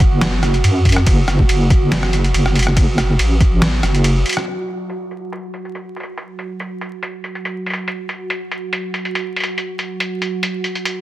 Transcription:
Already playing: F#1 F#4
0.00 kick, closed hi-hat
0.21 cross-stick, snare, closed hi-hat, ride
0.43 cross-stick, closed hi-hat
0.54 closed hi-hat
0.64 F#2, closed hi-hat, ride
0.85 kick, closed hi-hat
0.89 closed hi-hat
0.92 closed hi-hat
0.96 cross-stick
1.06 F#1, kick, closed hi-hat, ride
1.28 cross-stick, closed hi-hat
1.39 kick
1.49 F#1, closed hi-hat, ride
1.70 kick, closed hi-hat
1.92 snare, closed hi-hat, ride
2.03 cross-stick
2.13 closed hi-hat
2.24 closed hi-hat
2.34 F#1, closed hi-hat, ride
2.46 cross-stick
2.55 closed hi-hat
2.59 closed hi-hat
2.63 closed hi-hat
2.67 cross-stick
2.77 kick, closed hi-hat, ride
2.98 cross-stick, closed hi-hat
3.19 A1, closed hi-hat, ride
3.41 kick, closed hi-hat
3.62 cross-stick, snare, closed hi-hat, ride
3.83 F#1, cross-stick, closed hi-hat
3.94 closed hi-hat
4.04 closed hi-hat, ride
4.26 closed hi-hat
4.29 closed hi-hat
4.33 closed hi-hat
4.37 cross-stick
4.47 F#4, closed hi-hat
4.68 closed hi-hat
4.90 closed hi-hat
5.11 closed hi-hat
5.32 closed hi-hat
5.54 closed hi-hat
5.65 closed hi-hat
5.75 closed hi-hat
5.96 closed hi-hat
6.00 closed hi-hat
6.03 closed hi-hat
6.18 closed hi-hat
6.39 closed hi-hat
6.60 closed hi-hat
6.81 closed hi-hat
7.03 closed hi-hat
7.24 closed hi-hat
7.35 closed hi-hat
7.45 closed hi-hat
7.66 closed hi-hat
7.70 closed hi-hat
7.73 closed hi-hat
7.88 closed hi-hat
8.09 closed hi-hat
8.30 closed hi-hat
8.52 closed hi-hat
8.73 closed hi-hat
8.94 closed hi-hat
9.05 closed hi-hat
9.15 closed hi-hat
9.36 closed hi-hat
9.40 closed hi-hat
9.44 closed hi-hat
9.58 closed hi-hat
9.79 closed hi-hat
10.00 closed hi-hat
10.22 closed hi-hat
10.43 closed hi-hat
10.64 closed hi-hat
10.75 closed hi-hat
10.85 closed hi-hat

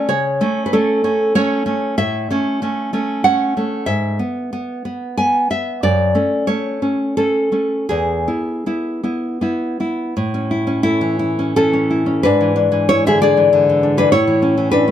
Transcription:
0.09 C#3 C#5
0.41 A3 C#4
0.66 B4
0.73 A3 C#4 A4
1.04 A3 C#4
1.35 A3 C#4 C#5
1.66 A3 C#4
1.98 A2 E5
2.30 A3 C#4
2.62 A3 C#4
2.93 A3 C#4
3.24 A3 C#4 F#5
3.57 A3 C#4
3.86 G#2 E5
4.19 B3
4.53 B3
4.85 B3
5.18 B3 G#5
5.50 B3 E5
5.83 F#2 D5
6.15 A3 C#4
6.47 A3 C#4 C#5
6.82 A3 C#4
7.17 A3 C#4 A4
7.52 A3 C#4
7.89 E2 G#4
8.28 B3 E4
8.66 B3 E4
9.03 B3 E4
9.41 B3 E4
9.80 B3 E4
10.17 A2
10.34 C#4
10.51 E4
10.67 C#4
10.83 A3 E4
11.01 E3
11.19 E4
11.39 C#4
11.56 E3 C#4 A4
11.73 C#4
11.90 E4
12.06 C#4
12.23 G#2 D4 B4
12.41 E3
12.56 D4
12.72 E3
12.89 E4 C#5
13.06 D3 G#4 E5
13.22 D4 G#4 D5
13.37 E3
13.53 D3
13.69 E3
13.83 D4
13.97 E3 D4 B4
14.12 A2 E4 C#5
14.27 E3
14.42 C#4
14.57 E3
14.71 D4 B4
14.88 A3

